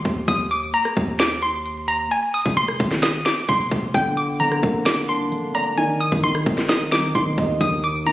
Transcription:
Already playing: C6, downlifter
0.05 D#2, kick, closed hi-hat
0.28 D#2 D#6, kick, closed hi-hat
0.51 D6, closed hi-hat
0.74 A#5, closed hi-hat
0.85 cross-stick
0.97 D#2, kick, closed hi-hat
1.19 D6, finger snap, snare, closed hi-hat
1.42 C6, closed hi-hat
1.66 closed hi-hat
1.88 A#5, closed hi-hat
2.11 G#5, closed hi-hat
2.34 D#6, closed hi-hat, open hi-hat
2.42 F1, kick, closed hi-hat
2.49 closed hi-hat
2.57 F1 C6, closed hi-hat
2.68 cross-stick
2.80 G#1, kick, closed hi-hat
2.91 snare
3.02 D#6, finger snap, snare, closed hi-hat
3.25 D6, finger snap, snare, closed hi-hat
3.49 F1 C6, kick, closed hi-hat
3.71 F1, kick, closed hi-hat
3.94 G1 D3 G5, kick, closed hi-hat
4.17 D6, closed hi-hat
4.40 D3 A#5, closed hi-hat
4.52 cross-stick
4.63 G1 A#3, kick, closed hi-hat
4.85 D3 D6, finger snap, snare, closed hi-hat
5.08 D4 C6, closed hi-hat
5.32 D3, closed hi-hat
5.55 D5 A#5, closed hi-hat
5.78 D#3 G#5, closed hi-hat
6.01 D#6, closed hi-hat
6.12 C2, kick
6.23 G#1 D#3 C6, closed hi-hat
6.35 cross-stick
6.46 G#1 C4, kick, closed hi-hat
6.58 snare
6.69 D#3 D#6, finger snap, snare, closed hi-hat
6.91 C2 D#4 D6, finger snap, snare, closed hi-hat
7.03 G#1
7.15 G#1 D#3 C6, kick, closed hi-hat
7.38 D#2 D#5, kick, closed hi-hat
7.60 D#2 D#3 D#6, kick, closed hi-hat
7.84 D6, closed hi-hat
8.06 D#3 A#5, closed hi-hat

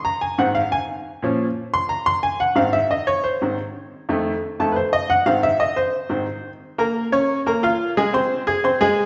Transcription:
0.05 A#5
0.21 G#5
0.38 G#2 D#3 C4 F#5
0.55 F5
0.72 G#5
1.23 A#2 F3 C#4
1.74 C6
1.89 A#5
2.06 C6
2.23 G#5
2.40 F#5
2.55 G#2 D#3 C4 F5
2.73 E5
2.91 D#5
3.07 C#5
3.24 C5
3.42 G#2 D#3 C4
4.09 F2 D#3 A3
4.60 F2 D#3 A3 A5
4.72 B4
4.76 C5
4.93 D#5
5.10 F#5
5.26 G#2 D#3 C4 F5
5.43 E5
5.60 D#5
5.76 C5
6.09 G#2 D#3 C4
6.78 A#3 A#4 A#5
7.12 C#4 C#5 C#6
7.46 A#3 A#4 A#5
7.63 F4 F5 F6
7.97 G#3 G#4 G#5
8.13 C4 C5 C6
8.47 G#4 G#5 G#6
8.64 C4 C5 C6
8.81 G#3 G#4 G#5

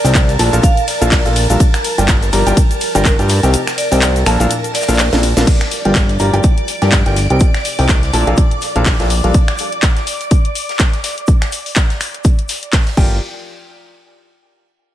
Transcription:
Already playing: A#4 D5 A5
0.04 C2 C3 D#4 G4 A#4 C5 G5, open hi-hat, shaker
0.15 kick, snare, clap, closed hi-hat, ride, shaker
0.28 snare, closed hi-hat, shaker
0.39 A#1 A#2 D4 F4 A4 A#4 A5, open hi-hat, ride, shaker
0.53 A#1 A#2 D4 F4 A4 A#4 F5, closed hi-hat, shaker
0.63 F5, kick, closed hi-hat, ride, shaker
0.77 closed hi-hat, shaker
0.88 D5, snare, open hi-hat, ride, shaker
1.01 A#1 A#2 D4 F4 A4 A#4 F5, closed hi-hat, shaker
1.12 kick, snare, clap, closed hi-hat, open hi-hat, ride, shaker
1.25 A#1 A#2 D4 F4 A4 A#4 F5, snare, closed hi-hat, shaker
1.36 open hi-hat, ride, shaker
1.50 A#1 G3 D4 F4 A4 A#4 F5, closed hi-hat, shaker
1.60 kick, closed hi-hat, ride, shaker
1.73 finger snap, snare, closed hi-hat, shaker
1.84 open hi-hat, ride, shaker
1.98 G1 G3 F4 G4 A#4 D5 G5, closed hi-hat, shaker
2.08 kick, snare, clap, closed hi-hat, ride, shaker
2.22 snare, closed hi-hat, shaker
2.33 G1 G3 F4 G4 A#4 D5 A#5, open hi-hat, ride, shaker
2.46 G1 G3 F4 G4 A#4 D5 G5, closed hi-hat, shaker
2.57 kick, closed hi-hat, ride, shaker
2.71 closed hi-hat, shaker
2.81 open hi-hat, ride, shaker
2.94 G1 G3 F4 G4 A#4 D5 G5, snare, closed hi-hat, shaker
3.05 kick, snare, clap, closed hi-hat, ride, shaker
3.19 G2 F4 G4 A#4 D5 G5, snare, closed hi-hat, shaker
3.29 snare, open hi-hat, ride, shaker
3.43 C2 C3 D#4 G4 A#4 C5 G5, snare, closed hi-hat, shaker
3.54 closed hi-hat, ride, shaker
3.67 finger snap, snare, closed hi-hat, shaker
3.78 D5, open hi-hat, ride, shaker
3.92 C2 C3 D#4 G4 A#4 C5 G5, open hi-hat, shaker
4.02 snare, clap, closed hi-hat, ride, shaker
4.16 snare, closed hi-hat, shaker
4.26 A#1 A#2 D4 F4 A4 A#4 A5, finger snap, open hi-hat, ride, shaker
4.40 A#1 A#2 D4 F4 A4 A#4 F5, closed hi-hat, shaker
4.51 closed hi-hat, ride, shaker
4.64 closed hi-hat, shaker
4.74 D5, snare, open hi-hat, ride, shaker
4.81 snare, shaker
4.88 A#1 A#2 D4 F4 A4 A#4 F5, snare, closed hi-hat, shaker
4.93 snare, shaker
4.98 snare, clap, closed hi-hat, open hi-hat, ride, shaker
5.13 A#1 A#2 D4 F4 A4 A#4 F5, snare, closed hi-hat, shaker
5.23 open hi-hat, ride, shaker
5.37 A#1 G3 D4 F4 A4 A#4 F5, snare, closed hi-hat, shaker
5.47 D5 D6, kick, closed hi-hat, crash, shaker
5.60 finger snap, snare, closed hi-hat
5.71 open hi-hat, shaker
5.85 G1 G3 F4 G4 A#4 D5 G5, closed hi-hat
5.95 kick, snare, clap, closed hi-hat, shaker
6.09 snare, closed hi-hat
6.19 G1 G3 F4 G4 A#4 D5 A#5, open hi-hat, shaker
6.33 G1 G3 F4 G4 A#4 D5 G5, closed hi-hat
6.44 kick, closed hi-hat, shaker
6.58 closed hi-hat
6.68 open hi-hat, shaker
6.82 G2 G3 F4 G4 A#4 D5 G5, snare, closed hi-hat
6.92 kick, snare, clap, closed hi-hat, shaker
7.06 G1 F4 G4 A#4 D5 G5, snare, closed hi-hat
7.16 snare, open hi-hat, shaker
7.30 C2 C3 D#4 G4 A#4 C5 G5, closed hi-hat
7.40 kick, closed hi-hat, shaker
7.54 finger snap, snare, closed hi-hat
7.65 open hi-hat, shaker
7.79 C2 C3 D#4 G4 A#4 C5 G5, open hi-hat
7.89 kick, snare, clap, closed hi-hat, shaker
8.03 snare, closed hi-hat
8.13 A#1 A#2 D4 F4 A4 A#4 A5, open hi-hat, shaker
8.27 A#1 A#2 D4 F4 A4 A#4 F5, closed hi-hat
8.37 kick, closed hi-hat, shaker
8.51 closed hi-hat
8.61 snare, open hi-hat, shaker
8.76 A#1 A#2 D4 F4 A4 A#4 F5, closed hi-hat
8.86 kick, snare, clap, closed hi-hat, open hi-hat
9.00 A#1 A#2 D4 F4 A4 A#4 F5, snare, closed hi-hat
9.10 open hi-hat, shaker
9.24 A#1 G3 D4 F4 A4 A#4 F5, closed hi-hat
9.34 kick, closed hi-hat, shaker
9.48 finger snap, snare, closed hi-hat
9.58 open hi-hat, shaker
9.72 closed hi-hat
9.82 kick, snare, clap, closed hi-hat, shaker
9.97 snare, closed hi-hat
10.07 open hi-hat, shaker
10.21 closed hi-hat
10.31 kick, closed hi-hat, shaker
10.45 closed hi-hat
10.55 open hi-hat, shaker
10.69 snare, closed hi-hat
10.79 kick, snare, clap, closed hi-hat, shaker
10.93 snare, closed hi-hat
11.04 snare, open hi-hat, shaker
11.18 closed hi-hat
11.27 kick, closed hi-hat, shaker
11.41 finger snap, snare, closed hi-hat
11.52 open hi-hat, shaker
11.66 open hi-hat
11.75 kick, snare, clap, closed hi-hat, shaker
11.90 snare, closed hi-hat
12.01 finger snap, open hi-hat, shaker
12.14 closed hi-hat
12.24 kick, closed hi-hat, shaker
12.39 closed hi-hat
12.49 snare, open hi-hat, shaker
12.63 closed hi-hat
12.73 kick, snare, clap, closed hi-hat, open hi-hat
12.87 snare, closed hi-hat
12.97 G1 F4 G4 A#4 D5 G5, kick, crash

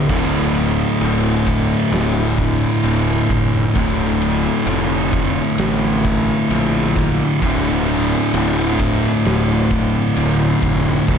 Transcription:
0.09 D1 D2 A2 D3, kick, crash
0.55 ride
1.01 D1, ride
1.47 kick, ride
1.91 D1, snare, ride
2.38 kick, ride
2.83 D1, ride
3.30 F1, kick, ride
3.75 D1 D2 A2 D3, kick, ride
4.22 ride
4.66 F1, ride
5.13 kick, ride
5.58 A1, snare, ride
6.04 kick, ride
6.50 A#1, ride
6.96 kick, ride
7.41 D1 D2 A2 D3, kick, ride
7.88 ride
8.33 D1, ride
8.79 kick, ride
9.25 D1, snare, ride
9.50 snare
9.71 kick, ride
10.16 D1, ride
10.62 F1, kick, ride
11.08 D1 D2 A2 D3, kick, ride

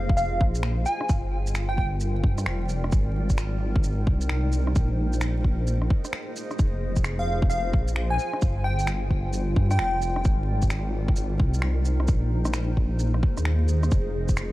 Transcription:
Already playing: F1 F4 C5 D#5
0.09 G5, kick
0.17 F5, shaker
0.41 A#1, kick
0.55 shaker
0.63 finger snap
0.86 G#5, shaker
1.01 cross-stick
1.09 G1, kick, shaker
1.21 A#4
1.39 D5
1.47 shaker
1.55 finger snap, shaker
1.69 G5
1.77 G5, kick
2.01 shaker
2.24 G2, kick
2.38 cross-stick, shaker
2.46 F1, finger snap
2.69 shaker
2.84 cross-stick
2.92 G#1, kick, shaker
3.30 D#4, kick, shaker
3.38 finger snap, shaker
3.65 C5
3.76 kick
3.84 shaker
4.07 C2, kick
4.21 shaker
4.29 C2, finger snap
4.52 shaker
4.67 cross-stick
4.75 A#1 A#3, kick, shaker
5.06 F4
5.13 D#5, shaker
5.21 finger snap, shaker
5.45 kick
5.67 shaker
5.82 cross-stick
5.90 kick
6.05 cross-stick, shaker
6.13 finger snap
6.36 shaker
6.51 cross-stick, shaker
6.59 F1, kick, shaker
6.95 G5, kick, shaker
7.04 finger snap, shaker
7.19 F5
7.42 kick
7.50 F5, shaker
7.73 A#1, kick
7.88 shaker
7.96 finger snap
8.10 G#5
8.19 shaker
8.33 cross-stick
8.42 G1, kick, shaker
8.64 G5
8.79 shaker
8.87 finger snap, shaker
9.08 A#4, kick
9.33 shaker
9.56 G2, kick
9.71 G5, cross-stick, shaker
9.79 F1, finger snap
10.02 shaker
10.16 cross-stick
10.25 G#1, kick, shaker
10.60 D#4, kick, shaker
10.70 finger snap, shaker
11.08 C5, kick
11.16 shaker
11.40 C2, kick
11.54 shaker
11.62 C2, finger snap
11.85 shaker
12.00 cross-stick
12.08 A#1 A#3, kick, shaker
12.35 F4 G#4
12.45 cross-stick, shaker
12.54 finger snap, shaker
12.77 kick
12.93 D#5
12.99 shaker
13.14 cross-stick
13.23 kick
13.37 D#2, cross-stick, shaker
13.45 finger snap
13.68 D#2, shaker
13.83 cross-stick, shaker
13.91 F1, kick, shaker
14.29 kick, shaker
14.37 finger snap, shaker

